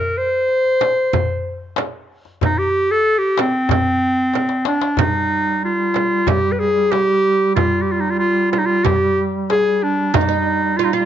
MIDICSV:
0, 0, Header, 1, 6, 480
1, 0, Start_track
1, 0, Tempo, 642398
1, 1814, Time_signature, 4, 2, 24, 8
1, 8259, End_track
2, 0, Start_track
2, 0, Title_t, "Clarinet"
2, 0, Program_c, 0, 71
2, 0, Note_on_c, 0, 70, 83
2, 132, Note_on_c, 0, 72, 98
2, 143, Note_off_c, 0, 70, 0
2, 1212, Note_off_c, 0, 72, 0
2, 1829, Note_on_c, 0, 63, 90
2, 1933, Note_on_c, 0, 67, 107
2, 1944, Note_off_c, 0, 63, 0
2, 2177, Note_on_c, 0, 69, 102
2, 2188, Note_off_c, 0, 67, 0
2, 2378, Note_on_c, 0, 67, 92
2, 2390, Note_off_c, 0, 69, 0
2, 2547, Note_on_c, 0, 60, 102
2, 2558, Note_off_c, 0, 67, 0
2, 3491, Note_off_c, 0, 60, 0
2, 3495, Note_on_c, 0, 62, 92
2, 3729, Note_on_c, 0, 63, 94
2, 3740, Note_off_c, 0, 62, 0
2, 4212, Note_off_c, 0, 63, 0
2, 4220, Note_on_c, 0, 65, 85
2, 4693, Note_on_c, 0, 67, 102
2, 4704, Note_off_c, 0, 65, 0
2, 4872, Note_on_c, 0, 71, 64
2, 4883, Note_off_c, 0, 67, 0
2, 4925, Note_on_c, 0, 68, 99
2, 4936, Note_off_c, 0, 71, 0
2, 5167, Note_on_c, 0, 67, 117
2, 5179, Note_off_c, 0, 68, 0
2, 5641, Note_off_c, 0, 67, 0
2, 5645, Note_on_c, 0, 65, 92
2, 5841, Note_on_c, 0, 67, 81
2, 5852, Note_off_c, 0, 65, 0
2, 5916, Note_on_c, 0, 65, 77
2, 5928, Note_off_c, 0, 67, 0
2, 5981, Note_on_c, 0, 63, 80
2, 5992, Note_off_c, 0, 65, 0
2, 6057, Note_on_c, 0, 65, 80
2, 6068, Note_off_c, 0, 63, 0
2, 6116, Note_off_c, 0, 65, 0
2, 6120, Note_on_c, 0, 65, 93
2, 6351, Note_off_c, 0, 65, 0
2, 6368, Note_on_c, 0, 65, 85
2, 6416, Note_on_c, 0, 63, 77
2, 6427, Note_off_c, 0, 65, 0
2, 6471, Note_on_c, 0, 65, 89
2, 6483, Note_off_c, 0, 63, 0
2, 6609, Note_on_c, 0, 67, 101
2, 6620, Note_off_c, 0, 65, 0
2, 6892, Note_off_c, 0, 67, 0
2, 7111, Note_on_c, 0, 68, 108
2, 7348, Note_on_c, 0, 62, 90
2, 7360, Note_off_c, 0, 68, 0
2, 7578, Note_on_c, 0, 63, 92
2, 7589, Note_off_c, 0, 62, 0
2, 8050, Note_on_c, 0, 65, 87
2, 8061, Note_off_c, 0, 63, 0
2, 8107, Note_on_c, 0, 63, 77
2, 8118, Note_off_c, 0, 65, 0
2, 8173, Note_on_c, 0, 65, 92
2, 8185, Note_off_c, 0, 63, 0
2, 8259, Note_off_c, 0, 65, 0
2, 8259, End_track
3, 0, Start_track
3, 0, Title_t, "Oud"
3, 0, Program_c, 1, 24
3, 7578, Note_on_c, 1, 63, 62
3, 7629, Note_on_c, 1, 62, 50
3, 7631, Note_off_c, 1, 63, 0
3, 7681, Note_off_c, 1, 62, 0
3, 7685, Note_on_c, 1, 63, 62
3, 8060, Note_off_c, 1, 63, 0
3, 8063, Note_on_c, 1, 65, 70
3, 8159, Note_off_c, 1, 65, 0
3, 8168, Note_on_c, 1, 65, 71
3, 8259, Note_off_c, 1, 65, 0
3, 8259, End_track
4, 0, Start_track
4, 0, Title_t, "Duduk"
4, 0, Program_c, 2, 69
4, 3720, Note_on_c, 2, 55, 65
4, 7571, Note_off_c, 2, 55, 0
4, 7576, Note_on_c, 2, 55, 68
4, 8259, Note_off_c, 2, 55, 0
4, 8259, End_track
5, 0, Start_track
5, 0, Title_t, "Darbuka"
5, 363, Note_on_c, 9, 62, 26
5, 437, Note_off_c, 9, 62, 0
5, 483, Note_on_c, 9, 62, 27
5, 558, Note_off_c, 9, 62, 0
5, 606, Note_on_c, 9, 63, 72
5, 681, Note_off_c, 9, 63, 0
5, 847, Note_on_c, 9, 64, 81
5, 922, Note_off_c, 9, 64, 0
5, 966, Note_on_c, 9, 62, 30
5, 1041, Note_off_c, 9, 62, 0
5, 1317, Note_on_c, 9, 63, 77
5, 1392, Note_off_c, 9, 63, 0
5, 1683, Note_on_c, 9, 62, 31
5, 1758, Note_off_c, 9, 62, 0
5, 1803, Note_on_c, 9, 64, 77
5, 1878, Note_off_c, 9, 64, 0
5, 2050, Note_on_c, 9, 62, 31
5, 2125, Note_off_c, 9, 62, 0
5, 2522, Note_on_c, 9, 63, 83
5, 2596, Note_off_c, 9, 63, 0
5, 2642, Note_on_c, 9, 62, 27
5, 2717, Note_off_c, 9, 62, 0
5, 2757, Note_on_c, 9, 64, 95
5, 2831, Note_off_c, 9, 64, 0
5, 3240, Note_on_c, 9, 63, 53
5, 3315, Note_off_c, 9, 63, 0
5, 3354, Note_on_c, 9, 62, 62
5, 3429, Note_off_c, 9, 62, 0
5, 3476, Note_on_c, 9, 63, 80
5, 3551, Note_off_c, 9, 63, 0
5, 3598, Note_on_c, 9, 62, 84
5, 3673, Note_off_c, 9, 62, 0
5, 3713, Note_on_c, 9, 64, 85
5, 3788, Note_off_c, 9, 64, 0
5, 3840, Note_on_c, 9, 62, 27
5, 3915, Note_off_c, 9, 62, 0
5, 4082, Note_on_c, 9, 62, 28
5, 4157, Note_off_c, 9, 62, 0
5, 4440, Note_on_c, 9, 63, 55
5, 4515, Note_off_c, 9, 63, 0
5, 4683, Note_on_c, 9, 64, 89
5, 4757, Note_off_c, 9, 64, 0
5, 4933, Note_on_c, 9, 62, 25
5, 5008, Note_off_c, 9, 62, 0
5, 5177, Note_on_c, 9, 63, 63
5, 5251, Note_off_c, 9, 63, 0
5, 5541, Note_on_c, 9, 62, 25
5, 5615, Note_off_c, 9, 62, 0
5, 5658, Note_on_c, 9, 64, 79
5, 5732, Note_off_c, 9, 64, 0
5, 5779, Note_on_c, 9, 62, 24
5, 5853, Note_off_c, 9, 62, 0
5, 6023, Note_on_c, 9, 62, 27
5, 6098, Note_off_c, 9, 62, 0
5, 6619, Note_on_c, 9, 64, 98
5, 6694, Note_off_c, 9, 64, 0
5, 6862, Note_on_c, 9, 62, 25
5, 6936, Note_off_c, 9, 62, 0
5, 7098, Note_on_c, 9, 63, 68
5, 7173, Note_off_c, 9, 63, 0
5, 7459, Note_on_c, 9, 62, 27
5, 7533, Note_off_c, 9, 62, 0
5, 7579, Note_on_c, 9, 64, 94
5, 7654, Note_off_c, 9, 64, 0
5, 7941, Note_on_c, 9, 62, 28
5, 8015, Note_off_c, 9, 62, 0
5, 8259, End_track
6, 0, Start_track
6, 0, Title_t, "Frame drum"
6, 605, Note_on_c, 9, 64, 67
6, 680, Note_off_c, 9, 64, 0
6, 847, Note_on_c, 9, 64, 82
6, 922, Note_off_c, 9, 64, 0
6, 1330, Note_on_c, 9, 64, 70
6, 1405, Note_off_c, 9, 64, 0
6, 1814, Note_on_c, 9, 64, 84
6, 1888, Note_off_c, 9, 64, 0
6, 2532, Note_on_c, 9, 64, 73
6, 2607, Note_off_c, 9, 64, 0
6, 2772, Note_on_c, 9, 64, 94
6, 2847, Note_off_c, 9, 64, 0
6, 3253, Note_on_c, 9, 64, 67
6, 3328, Note_off_c, 9, 64, 0
6, 3726, Note_on_c, 9, 64, 106
6, 3801, Note_off_c, 9, 64, 0
6, 4452, Note_on_c, 9, 64, 66
6, 4526, Note_off_c, 9, 64, 0
6, 4689, Note_on_c, 9, 64, 98
6, 4764, Note_off_c, 9, 64, 0
6, 5167, Note_on_c, 9, 64, 63
6, 5242, Note_off_c, 9, 64, 0
6, 5652, Note_on_c, 9, 64, 81
6, 5727, Note_off_c, 9, 64, 0
6, 6374, Note_on_c, 9, 64, 63
6, 6448, Note_off_c, 9, 64, 0
6, 6610, Note_on_c, 9, 64, 86
6, 6685, Note_off_c, 9, 64, 0
6, 7099, Note_on_c, 9, 64, 58
6, 7174, Note_off_c, 9, 64, 0
6, 7576, Note_on_c, 9, 64, 98
6, 7651, Note_off_c, 9, 64, 0
6, 8259, End_track
0, 0, End_of_file